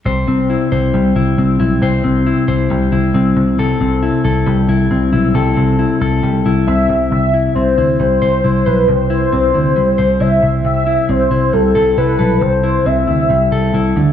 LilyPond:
<<
  \new Staff \with { instrumentName = "Soft synth lead" } { \time 4/4 \key c \lydian \tempo 4 = 136 r1 | r1 | r1 | r2. e''4 |
e''4 c''4 c''4. b'8 | c''2. e''4 | e''4 c''4 a'4 b'4 | c''4 e''2~ e''8 r8 | }
  \new Staff \with { instrumentName = "Clean electric guitar" } { \time 4/4 \key c \lydian <c c''>8 c'8 e'8 c''8 g8 e'8 c'8 e'8 | <c c''>8 c'8 e'8 c''8 g8 e'8 c'8 c8 | <c a'>8 c'8 e'8 a'8 g8 e'8 c'8 e'8 | <c a'>8 c'8 e'8 a'8 g8 e'8 c'8 c8 |
c8 e'8 c'8 e'8 g8 c''8 e'8 c''8 | c8 e'8 c'8 e'8 g8 c''8 e'8 c8 | c8 e'8 c'8 e'8 g8 a'8 e'8 a'8 | c8 e'8 c'8 e'8 g8 a'8 e'8 d8 | }
  \new Staff \with { instrumentName = "Picked electric bass" } { \clef bass \time 4/4 \key c \lydian c,8 c,8. r16 c,8 c,8 c,8 c,8 b,,8 | c,8 c,8. r16 c,8 c,8 c,8 c,8 c,8~ | c,8 c,8. r16 c,8 c,8 c,8 c,8 b,,8 | c,8 c,8. r16 c,8 c,8 c,8 c,8 c,8 |
c,4 c,8 d,8 c,8 c,8 c,8 b,,8 | c,4 c,8 d,8 c,8 c,8 c,8 c,8~ | c,4 c,8 c,8 c,8 c,8 c,8 b,,8 | c,4 c,8 d,8 c,8 c,8 c,8 d,8 | }
>>